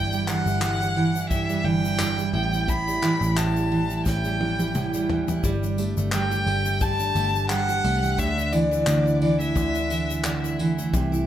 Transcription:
Already playing: G1 G2 E3 G3 E4 G5
0.13 G3, shaker
0.28 E3 F#5, clap, shaker
0.46 G1 E4, shaker
0.62 G2, clap, shaker
0.82 G3, shaker
0.97 E3
1.16 E4, shaker
1.30 G2 E5, kick, shaker
1.49 G3, shaker
1.64 G1 E3 G5
1.85 E4, shaker
1.99 G2, clap, shaker
2.18 G3, shaker
2.34 A1 A2 G5
2.53 E4, shaker
2.68 A2 B5, kick, shaker
2.87 G3, shaker
3.02 E3, clap, shaker
3.21 A1 E4, shaker
3.37 A2 A5, clap, shaker
3.56 G3, shaker
3.72 E3
3.90 E4, shaker
4.06 A1 A2 G5, kick, snare, shaker
4.24 G3, shaker
4.41 E3, high tom
4.59 E4, high tom, shaker
4.75 A2, mid tom, shaker
4.94 G3, shaker
5.10 E3, floor tom
5.28 E4, floor tom, shaker
5.44 G1 G3, kick, shaker
5.63 D4, shaker
5.78 A3, tambourine, shaker
5.97 G1 A3, shaker
6.12 G3 G5, clap, shaker
6.31 G4, shaker
6.47 G1 A3, tambourine
6.65 A3, shaker
6.81 G3 A5, kick, shaker
7.00 D4, shaker
7.15 G1 A3, tambourine, shaker
7.34 A3, shaker
7.50 G3 F#5, clap, shaker
7.69 G4, shaker
7.84 C2 A3, tambourine
8.03 A3, shaker
8.18 D2 D3 E5, kick, shaker
8.37 D4, shaker
8.53 E3 D5, tambourine, shaker
8.71 A3, shaker
8.87 D2 D3, clap, shaker
9.06 E4, shaker
9.21 E3 D5, tambourine
9.40 A3 E5, shaker
9.55 D2 D3, kick, shaker
9.75 D4, shaker
9.90 E3, tambourine, shaker
10.10 A3, shaker
10.24 D3, clap, shaker
10.44 E4, shaker
10.59 E3, tambourine
10.78 A3, shaker
10.94 C2 C3, kick, shaker
11.12 E4, shaker

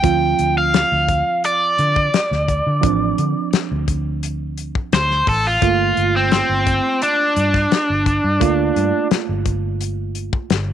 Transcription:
Already playing: G5
0.02 D2 F3 C4 F4, kick, closed hi-hat
0.39 D2, closed hi-hat
0.58 F5
0.74 snare, closed hi-hat
0.92 D2
1.09 kick, closed hi-hat
1.44 D5, closed hi-hat
1.78 D3, closed hi-hat
1.96 kick
2.14 snare, closed hi-hat
2.31 D2, snare
2.48 kick, closed hi-hat
2.67 D3
2.81 A1 F3 C4 D4, kick, closed hi-hat
3.18 D3, closed hi-hat
3.53 muted fingered electric bass stroke, snare, closed hi-hat
3.72 D2
3.88 kick, closed hi-hat
4.23 closed hi-hat
4.58 closed hi-hat
4.75 kick
4.93 D2 C5, snare, closed hi-hat
5.11 snare
5.27 A1 A4, kick, open hi-hat
5.47 F4
5.62 G1 A3 A#3 F4, kick, closed hi-hat
5.97 G1, closed hi-hat
6.16 C4
6.32 C4, snare, closed hi-hat
6.49 G1
6.67 kick, closed hi-hat
7.02 D4, closed hi-hat
7.36 G2, closed hi-hat
7.54 kick, snare
7.72 snare, closed hi-hat
7.90 G1
8.06 kick, closed hi-hat
8.24 G2
8.40 D2 A3 A#3 F4, kick, closed hi-hat
8.76 G2, closed hi-hat
9.11 muted fingered electric bass stroke, snare, closed hi-hat
9.29 G1
9.46 kick, closed hi-hat
9.81 closed hi-hat
10.15 closed hi-hat
10.33 kick
10.50 G1, snare, closed hi-hat

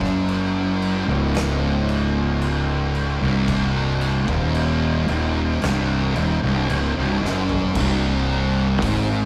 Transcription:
Already playing: F#1 F#2
0.01 kick, snare
0.28 crash
0.82 crash
1.08 C#1 C#2
1.35 snare, crash
1.89 crash
2.42 crash
2.95 crash
3.21 C1 C2
3.48 kick, crash
4.01 crash
4.28 D#1 D#2, kick
4.55 crash
5.08 D#1 D#2, crash
5.62 C1 C2, snare, crash
6.15 D#1 D#2, crash
6.42 C1 C2
6.69 C#1 C#2, crash
6.96 C1 C2
7.22 F#1 F#2, snare
7.49 floor tom
7.75 C1 C2, kick, crash
8.82 G#1 G#2, kick, open hi-hat

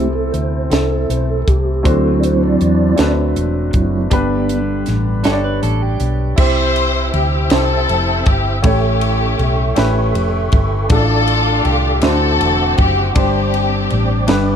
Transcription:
Already playing: C2 C3 E3 A3 C4 E4 G4 A4
0.13 A4
0.32 D2 C5, closed hi-hat
0.70 C2 C4 E4 A4, snare, closed hi-hat
1.10 B1 C5, closed hi-hat
1.29 A4
1.42 A4
1.47 C2 G4, kick, closed hi-hat
1.83 D2 D3 F#3 A3 C4 D4 F#4 C5, kick, closed hi-hat
1.88 C4 E4 A4
2.20 D5, closed hi-hat
2.24 C5
2.44 D5
2.61 E2, closed hi-hat
2.96 D2 A3 C4 D4 F#4 B4, snare, closed hi-hat
3.36 E1, closed hi-hat
3.73 F#1 F#3 C4 E4, kick, closed hi-hat
4.10 G1 G2 D3 G3 B3 D4 G4 B4, kick, closed hi-hat
4.49 closed hi-hat
4.86 A1, snare, closed hi-hat
5.23 G1 D4 G4 A4 C#5, snare, closed hi-hat
5.32 D5
5.44 B4
5.63 A1 A4, closed hi-hat
5.82 G4
6.00 B1, closed hi-hat
6.36 C2 C3 E4 G4 C5 E5 G5 E6, kick, crash
6.76 ride
7.14 D2 G4, ride
7.50 C2 C4 E4 G4 A4 C5, snare, ride
7.89 F1, ride
8.26 G1 G4, kick, ride
8.63 A1 A2 A3 C#4 E4 G4 A4 C#5 C#6, kick, ride
9.01 ride
9.39 B1, ride
9.76 A1 A3 C#4 E4 G4 B4, snare, ride
10.14 F1, ride
10.52 G1, kick, ride
10.89 A1 A2 D4 F4 A4 D5 F5 D6, kick, ride
10.93 A4
11.28 ride
11.65 C2 G4, ride
12.01 D2 D3 A3 C4 D4 E4 F#4 A4 C5 E5 F#5, snare, ride
12.40 E1, ride
12.78 F#1 G4, kick, ride
13.15 G1 G2 C4 D4 G4 C5 D5 G5 D6, kick, ride
13.54 ride
13.90 A1, ride
14.27 G1 G2 D4 G4 B4, snare, ride

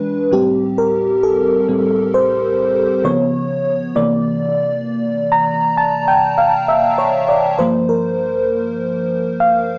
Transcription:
Already playing: E3 G#3 D4 B4
0.31 A2 G3 C4 G4
0.78 A#4
1.23 A4
1.68 A2 G3 C4
2.14 C5
3.04 C#3 F3 B3 C#5
3.95 C3 E3 A#3 D5
5.32 A#5
5.77 A5
6.08 G5
6.38 F5
6.68 E5
6.98 C#5
7.29 D5
7.59 G2 F3 A#3 C5
7.89 A#4
9.40 F5

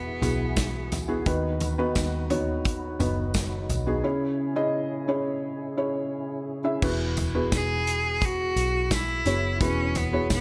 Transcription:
Already playing: E1 E3 B3 E4 F#4 G#4 B4
0.22 B1 B3 E4 F#4 G#4, closed hi-hat, floor tom, tambourine
0.56 kick, snare, closed hi-hat, tambourine
0.92 snare, closed hi-hat, floor tom, tambourine
1.08 B3 E4 F#4 G#4
1.26 D#2 D#3 B3 D#4 F#4 B4, kick, closed hi-hat, tambourine
1.60 closed hi-hat, floor tom, tambourine
1.78 B3 D#4 F#4 B4
1.95 D#2, kick, snare, closed hi-hat, tambourine
2.30 B3 D#4 F#4 C#5, closed hi-hat, floor tom
2.65 kick, closed hi-hat, tambourine
2.99 F#1 B3 D#4 F#4 B4, closed hi-hat, floor tom, tambourine
3.34 kick, snare, closed hi-hat, tambourine
3.69 B1, closed hi-hat, floor tom, tambourine
3.86 B3 D#4 F#4 G#4
4.03 C#3 C#4 E4 G#4 C#5
4.56 C#4 E4 G#4 D#5
5.08 C#4 E4 G#4 C#5
5.77 C#4 E4 G#4 C#5
6.64 C#4 E4 G#4 E5
6.82 E1 E3 B3 E4 F#4 G#4 B4, kick, crash, tambourine
7.17 closed hi-hat, floor tom, tambourine
7.35 B3 E4 F#4 G#4 B4
7.52 E1 G#4, kick, snare, closed hi-hat, tambourine
7.87 closed hi-hat, tambourine
8.21 kick, closed hi-hat, tambourine
8.25 F#4
8.56 B1, closed hi-hat, tambourine
8.91 E4, kick, snare, closed hi-hat, tambourine
9.25 F#1 B3 E4 F#4 G#4 C#5, snare, closed hi-hat, tambourine
9.61 E1 E3 B3 C#4 E4 F#4 G#4 B4, kick, closed hi-hat, tambourine
9.95 B3, closed hi-hat, floor tom, tambourine
10.13 B3 E4 F#4 G#4 C#5
10.30 E1 B3, kick, snare, closed hi-hat, tambourine

